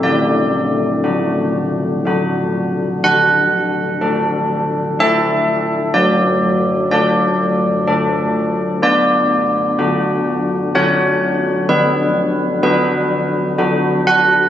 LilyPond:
\new Staff \with { instrumentName = "Church bells" } { \time 3/4 \key d \major \tempo 4 = 62 << { d''2~ d''8 r8 | fis''2 e''4 | d''4 d''4. r8 | d''2 cis''4 |
b'4 b'4. fis''8 | } \\ { d4 <d' fis'>4 <d' fis'>4 | d4 <d' a'>4 <d' a'>4 | fis4 <d' a'>4 <d' a'>4 | b4 <d' fis'>4 <d' fis'>4 |
d4 <d' fis'>4 <d' fis'>4 | } >> }